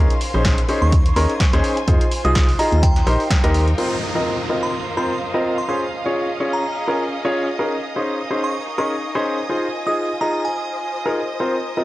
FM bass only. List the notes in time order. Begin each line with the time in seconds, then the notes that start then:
0.34 A#1
0.82 D#2
1.16 D#2
1.53 D#2
1.88 F2
2.25 C2
2.72 D#2
3.07 A#1
3.44 D#2